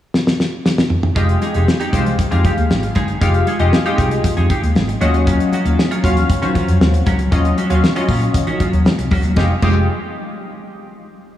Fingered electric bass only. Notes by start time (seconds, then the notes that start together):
1.16 F1
1.55 F1
1.93 C2
2.19 muted fingered electric bass stroke
2.32 F2
2.57 D#2
2.70 G#1
2.96 G1
3.21 F1
3.60 F1
3.99 C2
4.24 muted fingered electric bass stroke
4.37 F2
4.63 D#2
4.76 G#1
5.01 D#2
5.66 D#2
6.04 D#2
6.42 D#3
6.68 F2
6.81 D#2
7.07 C#2
7.32 D#2
7.71 D#2
8.09 A#2
8.47 D#3
8.73 D#2
8.99 C2
9.12 C#2
9.24 D#2
9.37 F1
9.63 F1